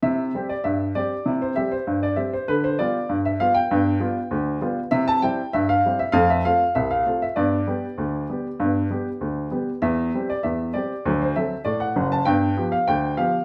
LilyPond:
<<
  \new Staff \with { instrumentName = "Upright piano" } { \time 2/4 \key c \major \tempo 4 = 98 e''8. d''16 e''8 d''8~ | d''16 c''16 e''16 c''8 d''16 e''16 c''16 | b'16 c''16 d''8. e''16 f''16 g''16~ | g''4. r8 |
e''16 a''16 g''8 e''16 f''8 e''16 | f''16 e''16 f''8 e''16 f''8 e''16 | d''2~ | d''4. r8 |
e''8. d''16 e''8 d''8~ | d''16 c''16 e''8 d''16 fis''8 a''16 | g''8. f''16 g''8 f''8 | }
  \new Staff \with { instrumentName = "Upright piano" } { \time 2/4 \key c \major <c e'>8 <g c' g'>8 g,8 <g c' g'>8 | <c e'>8 <g c' g'>8 g,8 <g c' g'>8 | d8 <g b f'>8 g,8 <g b f'>8 | <g, b>8 <g b f'>8 d,8 <g b f'>8 |
<c e'>8 <g c' e'>8 g,8 <g c' e'>8 | <f, a>8 <a c' f'>8 c,8 <a c' f'>8 | <g, b>8 <g b g'>8 d,8 <g b g'>8 | <g, b>8 <g b g'>8 d,8 <g b g'>8 |
e,8 <g c' g'>8 e,8 <g c' g'>8 | <d, fis>8 <fis c' a'>8 a,8 <fis,, fis,>8 | <g, b>8 <f b g'>8 d,8 <f b g'>8 | }
>>